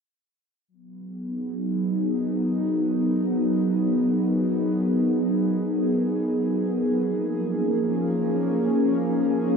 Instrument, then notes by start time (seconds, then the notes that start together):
analog synth pad
0.68 F#3
0.73 B3
0.97 G#4
1.10 D#4
2.00 A#4
7.00 F3
7.07 A#3
7.31 C#4